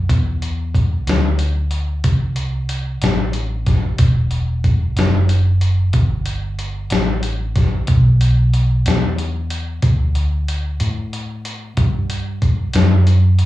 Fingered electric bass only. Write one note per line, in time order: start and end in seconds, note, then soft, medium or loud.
0.10 1.04 E2 medium
1.07 2.02 D2 medium
2.05 2.99 C2 medium
3.02 3.97 A1 medium
3.99 4.94 E1 medium
4.96 5.91 F#1 medium
5.94 6.88 G1 medium
6.91 7.85 A1 medium
7.89 8.83 B1 medium
8.86 9.80 E2 medium
9.83 10.77 D2 medium
10.81 11.75 A2 medium
11.77 12.72 G2 medium
12.75 13.46 F#2 medium